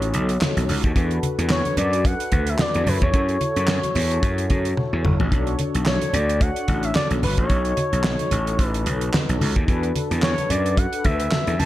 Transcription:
Already playing: slap bass A1, analog polysynth D#4 F#4 A4 C#5, analog synth lead C#5
0.02 closed hi-hat
0.14 slap bass B1, closed hi-hat, high conga
0.29 closed hi-hat
0.41 snare, clap, muted conga, high conga
0.57 slap bass B1, closed hi-hat
0.69 slap bass C#2, open hi-hat, high conga, low conga
0.84 slap bass D#2, kick, closed hi-hat
0.95 slap bass E2, analog polysynth D4 F#4 A4 B4, kick, closed hi-hat
1.11 closed hi-hat
1.23 closed hi-hat, muted conga, high conga
1.38 slap bass E2, closed hi-hat
1.50 analog synth lead C#5, snare, clap, muted conga
1.65 closed hi-hat, high conga
1.77 slap bass F#2, analog synth lead D5, closed hi-hat, muted conga, low conga
1.93 closed hi-hat
2.04 analog synth lead F#5, kick, closed hi-hat, muted conga
2.20 closed hi-hat
2.32 slap bass D2, kick, closed hi-hat, muted conga, high conga
2.47 analog synth lead E5, closed hi-hat
2.59 analog synth lead D5, snare, clap, high conga
2.74 slap bass E2, closed hi-hat
2.86 slap bass F#2, analog polysynth E4 F#4 A4 C#5, analog synth lead B4, open hi-hat, muted conga, high conga, low conga
3.02 slap bass E2, analog synth lead C#5, kick, closed hi-hat
3.14 slap bass F#2, kick, closed hi-hat, muted conga
3.29 closed hi-hat
3.41 closed hi-hat, high conga
3.56 slap bass F#2, closed hi-hat
3.68 snare, clap, muted conga
3.83 closed hi-hat, high conga
3.95 slap bass E2, open hi-hat, muted conga, low conga
4.11 closed hi-hat
4.23 slap bass F#2, kick, closed hi-hat
4.38 closed hi-hat
4.50 slap bass F#2, kick, closed hi-hat, muted conga, high conga
4.65 closed hi-hat
4.77 high tom, high conga
4.93 slap bass E2
5.05 slap bass G1, mid tom, muted conga, high conga, low conga
5.20 slap bass A1, floor tom, low conga
5.31 slap bass B1, analog polysynth D4 F#4 A4 C#5, kick, closed hi-hat, muted conga
5.47 closed hi-hat
5.59 closed hi-hat, muted conga, high conga
5.75 slap bass B1, closed hi-hat
5.86 analog synth lead C#5, snare, clap, muted conga
6.02 closed hi-hat, high conga
6.13 slap bass D2, analog synth lead D5, closed hi-hat, muted conga, low conga
6.29 closed hi-hat
6.41 analog synth lead F#5, kick, closed hi-hat, muted conga
6.56 closed hi-hat
6.68 slap bass A1, kick, closed hi-hat, high conga
6.83 analog synth lead E5, closed hi-hat
6.95 analog synth lead D5, snare, clap, muted conga, high conga
7.11 slap bass B1, closed hi-hat
7.23 slap bass G1, analog synth lead B4, open hi-hat, muted conga, high conga, low conga
7.37 slap bass A1, analog synth lead C#5, kick, closed hi-hat
7.49 slap bass B1, analog polysynth C#4 F#4 A4 C#5, kick, closed hi-hat
7.56 analog polysynth D#4
7.65 closed hi-hat
7.77 closed hi-hat, muted conga, high conga
7.93 slap bass B1, closed hi-hat
8.04 snare, clap, muted conga
8.19 closed hi-hat, high conga
8.31 slap bass A1, closed hi-hat, low conga
8.47 closed hi-hat
8.59 slap bass A1, kick, closed hi-hat, muted conga
8.67 analog synth lead B4
8.74 closed hi-hat
8.86 slap bass B1, closed hi-hat, muted conga, high conga
9.01 closed hi-hat
9.14 snare, clap, muted conga, high conga
9.29 slap bass B1, closed hi-hat
9.41 slap bass C#2, open hi-hat, muted conga, high conga, low conga
9.56 slap bass D#2, kick, closed hi-hat
9.67 slap bass E2, analog polysynth D4 F#4 A4 B4, kick, closed hi-hat
9.83 closed hi-hat
9.96 closed hi-hat, muted conga, high conga
10.11 slap bass E2, closed hi-hat
10.22 analog synth lead C#5, snare, clap, muted conga
10.38 closed hi-hat, high conga
10.50 slap bass F#2, analog synth lead D5, closed hi-hat, muted conga, low conga
10.66 closed hi-hat
10.77 analog synth lead F#5, kick, closed hi-hat
10.93 closed hi-hat
11.05 slap bass D2, analog synth lead E5, kick, closed hi-hat, muted conga, high conga
11.20 closed hi-hat
11.31 snare, clap, high conga
11.47 slap bass E2, closed hi-hat
11.59 slap bass F#2, analog synth lead A5, open hi-hat, muted conga, high conga, low conga

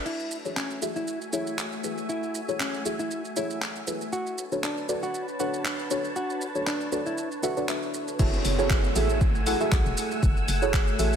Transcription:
0.06 string machine A3 F#4 E5 G#5, hollow-body jazz guitar E4, crash, shaker
0.20 shaker
0.31 shaker
0.45 synth stab E4 F#4 G#4 A4 C#5, shaker
0.57 hollow-body jazz guitar C#4, clap, shaker
0.71 shaker
0.82 synth stab E4 F#4 G#4 A4 E5, shaker
0.96 hollow-body jazz guitar E4, shaker
1.08 shaker
1.21 shaker
1.33 synth stab E4 F#4 G#4 A4 C#5, hollow-body jazz guitar E4, shaker
1.47 shaker
1.58 clap, shaker
1.72 shaker
1.84 synth stab E4 F#4 G#4 A4 B4, shaker
1.98 shaker
2.09 hollow-body jazz guitar E4, shaker
2.23 shaker
2.35 shaker
2.48 synth stab E4 F#4 G#4 A4 C#5, shaker
2.60 hollow-body jazz guitar C#4, clap, shaker
2.74 shaker
2.85 synth stab E4 F#4 G#4 A4 E5, shaker
2.99 hollow-body jazz guitar E4, shaker
3.11 shaker
3.25 shaker
3.36 synth stab E4 F#4 G#4 A4 C#5, hollow-body jazz guitar E4, shaker
3.50 shaker
3.62 clap, shaker
3.76 shaker
3.87 synth stab E4 F#4 G#4 A4 B4, shaker
4.01 shaker
4.13 string machine D4 B4 C#5 A5, hollow-body jazz guitar F#4, shaker
4.27 shaker
4.38 shaker
4.52 synth stab D4 F#4 A4 B4 C#5, shaker
4.63 hollow-body jazz guitar D4, clap, shaker
4.77 shaker
4.89 synth stab D4 F#4 A4 B4 D5, shaker
5.03 hollow-body jazz guitar F#4, shaker
5.14 shaker
5.28 shaker
5.40 synth stab D4 F#4 A4 B4 C#5, hollow-body jazz guitar F#4, shaker
5.54 shaker
5.65 clap, shaker
5.79 shaker
5.90 synth stab D4 F#4 A4 B4 C#5, shaker
6.04 shaker
6.16 hollow-body jazz guitar F#4, shaker
6.30 shaker
6.41 shaker
6.55 synth stab D4 F#4 A4 B4 C#5, shaker
6.67 hollow-body jazz guitar D4, clap, shaker
6.81 shaker
6.92 synth stab D4 F#4 A4 B4 D5, shaker
7.06 hollow-body jazz guitar E4, shaker
7.18 shaker
7.32 shaker
7.43 synth stab D4 F#4 A4 B4 E5, hollow-body jazz guitar F#4, shaker
7.57 synth stab D4 F#4 A4 B4 D5, shaker
7.68 synth stab D4 F#4 A4 B4 E5, clap, shaker
7.83 shaker
7.94 shaker
8.08 shaker
8.19 fm bass F#1, string machine A3 F#5 G#5 E6, synth stab E4 F#4 G#4 A4 C#5, kick, crash, downlifter, shaker
8.33 shaker
8.45 fm bass F#1, open hi-hat, shaker
8.58 synth stab E4 F#4 G#4 A4 C#5, shaker
8.70 kick, clap, shaker
8.84 shaker
8.95 fm bass A1, synth stab E4 F#4 G#4 A4 E5, open hi-hat, shaker
9.10 shaker
9.21 kick, shaker
9.35 shaker
9.46 synth stab E4 F#4 G#4 A4 F#5, open hi-hat, shaker
9.60 synth stab E4 F#4 G#4 A4 E5, shaker
9.72 fm bass B1, synth stab F#5, kick, clap, shaker
9.86 fm bass E1, shaker
9.97 open hi-hat, shaker
10.11 shaker
10.23 fm bass F#1, kick, shaker
10.37 shaker
10.48 fm bass F#1, open hi-hat, shaker
10.62 synth stab E4 F#4 G#4 A4 C#5, shaker
10.74 kick, clap, shaker
10.88 shaker
10.99 fm bass A1, synth stab E4 F#4 G#4 A4 E5, open hi-hat, shaker
11.13 shaker

